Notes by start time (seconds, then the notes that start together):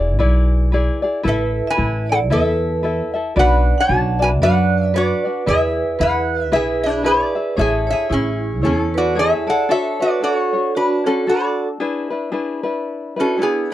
Already playing: E1 D5
0.00 E4 G#4
0.19 B1 E4 G#4 B4 D5
0.72 E4 G#4 B4 D5
1.02 E4 G#4 D5
1.23 A1 E4 A4 B4 E5
1.28 A4 E5
1.67 B4 E5 G#5
1.77 A1 E4 A4 B4 E5
2.09 A4 D5 F#5
2.30 E2 E4 A4 B4 E5
2.83 E4 A4 B4 E5
3.14 E4 A4 E5
3.36 B1 D4 F#4 B4 D5 F#5
3.40 B4
3.78 C#5 F#5 A5
3.89 B1 D4 F#4 B4 D5
4.19 D4 F#4 D5 E5 G#5
4.24 B4
4.42 F#2 D4 F#4 B4 D5 F#5
4.86 E5
4.94 D4 F#4 B4 D5
5.25 D4 F#4 D5
5.46 E2 E4 G#4 B4 E5
5.99 E2 E4 G#4 B4 E5 F#5
6.52 B1 E4 G#4 B4 E5
6.83 D4 G#4 B4
7.03 E4 G#4 B4 D5 E5
7.08 G#4
7.35 E4 G#4 E5
7.56 A1 E4 G#4 A4 C#5 E5
7.61 G#4
7.87 C#5 E5
7.92 G#4
8.09 A1 E4 G#4 C#5
8.14 C#4
8.62 E2 E4 A4 C#5
8.66 C#4
8.94 F#4 B4 D5
9.15 E4 G#4 A4 C#5 E5
9.20 G#4
9.47 E4 G#4 A4 D5 F#5
9.69 D4 F#4 A4 C#5 E5
10.00 D4 F#4 B4 C#5 D5
10.21 D4 F#4 A4 C#5 D5
10.35 C#5
10.53 D4 F#4 C#5
10.75 D4 F#4 B4
11.05 C#4 D4 F#4 A4 C#5
11.27 D4 F#4 A4 D5
11.80 D4 E4 G#4 B4
12.10 D4 E4 B4
12.32 D4 E4 G#4 B4
12.63 D4 E4 B4
13.16 C#4 D4 E4 F#4 B4
13.20 A4
13.37 D4 E4 G#4 B4
13.42 B3 G#4
13.71 G#4